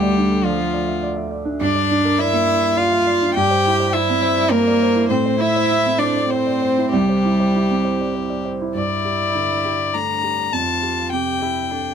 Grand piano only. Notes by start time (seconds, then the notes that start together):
Already playing: D2
0.02 D5
0.18 D4
0.31 A4
0.45 D5
0.59 A3
0.74 D5
0.89 E5
1.03 D5
1.16 E5
1.31 D5
1.45 D4
1.61 G2
1.75 D5
1.91 D4
2.05 A#4
2.20 D5
2.33 A#3
2.48 D5
2.63 E5
2.77 D5
2.91 E5
3.07 D5
3.22 D4
3.37 G2
3.51 C5
3.67 E4
3.80 C5
3.94 E4
4.10 C4
4.23 C5
4.38 D5
4.52 C5
4.67 D5
4.83 C5
4.96 E4
5.09 A2
5.26 C5
5.40 E4
5.56 C5
5.71 E4
5.86 C4
6.03 C5
6.16 D5
6.31 C5
6.47 D5
6.62 C5
6.78 E4
6.93 C2
7.09 C5
7.25 E4
7.40 C5
7.55 E4
7.71 C4
7.85 C5
8.01 D5
8.15 C5
8.30 D5
8.45 C5
8.61 E4
8.75 G2
9.05 G4
9.35 D3
9.65 G4
9.94 A3
10.23 G4
10.53 F2
10.82 G4
11.12 C3
11.42 G4
11.71 A4